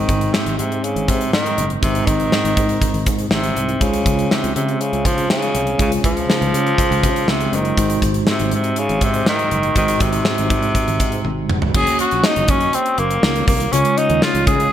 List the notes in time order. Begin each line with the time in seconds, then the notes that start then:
Already playing: G#2 D#3 G#3 C4 D#4 C5
0.09 G#1, kick, closed hi-hat
0.21 closed hi-hat
0.33 C3, snare
0.46 G#1, closed hi-hat
0.58 G#2 C3, closed hi-hat
0.72 closed hi-hat
0.84 C#3, closed hi-hat
0.96 G#1, closed hi-hat
1.08 G#2 C3, kick, closed hi-hat
1.21 closed hi-hat
1.33 D#3, snare
1.46 closed hi-hat
1.58 F#1, closed hi-hat
1.70 closed hi-hat
1.82 G#1 G#2 C3 G#3 C4 D#4 C5, kick, closed hi-hat
1.95 closed hi-hat
2.07 G#1 D#3, kick, closed hi-hat
2.20 closed hi-hat
2.32 snare
2.44 G#1, closed hi-hat
2.57 G#2, kick, closed hi-hat
2.69 closed hi-hat
2.82 kick, closed hi-hat
2.94 G#1, closed hi-hat
3.06 G#2, kick, closed hi-hat
3.19 closed hi-hat
3.31 G#1 C3, snare
3.44 closed hi-hat
3.56 C2, closed hi-hat
3.69 closed hi-hat
3.80 C#2 C#3 G#3 C#4 F4 C5, kick, closed hi-hat
3.94 closed hi-hat
4.06 C#2, kick, closed hi-hat
4.19 closed hi-hat
4.31 C3, snare
4.44 C#2, closed hi-hat
4.56 C3 C#3, closed hi-hat
4.69 closed hi-hat
4.81 C#3, closed hi-hat
4.93 C#2, closed hi-hat
5.05 C#3 F3, kick, closed hi-hat
5.18 closed hi-hat
5.30 C#3, snare
5.42 closed hi-hat
5.55 C2, closed hi-hat
5.67 closed hi-hat
5.78 C#2 C#3 G#3 C#4 F4 G#4, kick, closed hi-hat
5.92 closed hi-hat
6.04 C#2 F3, kick, closed hi-hat
6.17 closed hi-hat
6.30 snare
6.41 C#2, closed hi-hat
6.53 C#3, closed hi-hat
6.67 closed hi-hat
6.78 kick, closed hi-hat
6.91 C#2, closed hi-hat
7.03 C#3, kick, closed hi-hat
7.16 closed hi-hat
7.28 C#2 C3, snare
7.41 closed hi-hat
7.52 F#1 D#3 G#3 C#4 F4 C5, closed hi-hat
7.65 closed hi-hat
7.77 G#1 G#2 G#3 D#4 F#4 C5, kick, closed hi-hat
7.90 closed hi-hat
8.02 G#1, kick, closed hi-hat
8.14 closed hi-hat
8.27 C3, snare
8.39 G#1, closed hi-hat
8.51 G#2 C3, closed hi-hat
8.64 closed hi-hat
8.76 C#3, closed hi-hat
8.89 G#1, closed hi-hat
9.01 G#2 C3, kick, closed hi-hat
9.14 closed hi-hat
9.26 D#3, snare
9.39 closed hi-hat
9.51 F#1, closed hi-hat
9.63 closed hi-hat
9.75 G#1 G#2 D#3 G#3 D#4 F#4 C5, kick, closed hi-hat
9.88 closed hi-hat
10.00 G#1 C3, kick, closed hi-hat
10.13 closed hi-hat
10.25 snare
10.38 G#1, closed hi-hat
10.50 G#2, kick, closed hi-hat
10.63 closed hi-hat
10.75 kick, closed hi-hat
10.88 G#1, closed hi-hat
11.00 G#2, kick, closed hi-hat
11.12 closed hi-hat
11.25 G#1, high tom
11.49 F1, mid tom
11.62 floor tom
11.73 F#1 A#3 C#4 F#4 G#4 C#5, kick, crash
11.87 closed hi-hat
11.99 F#4, closed hi-hat
12.11 A#1, closed hi-hat
12.24 D#4, snare
12.36 F#1, closed hi-hat
12.48 F#2 C#4, kick, closed hi-hat
12.61 closed hi-hat
12.73 C4, closed hi-hat
12.86 closed hi-hat
12.98 F#1 A#3, closed hi-hat
13.11 closed hi-hat
13.23 C#2, snare
13.36 closed hi-hat
13.47 C2 A#3, kick, open hi-hat
13.60 closed hi-hat
13.72 C#2 C#3 G#3 C#4 F4 C#5, closed hi-hat
13.85 closed hi-hat
13.98 D#4, closed hi-hat
14.10 D#2, closed hi-hat
14.22 F4, snare
14.34 C#2, closed hi-hat
14.47 C#3 G#4, kick, closed hi-hat
14.60 closed hi-hat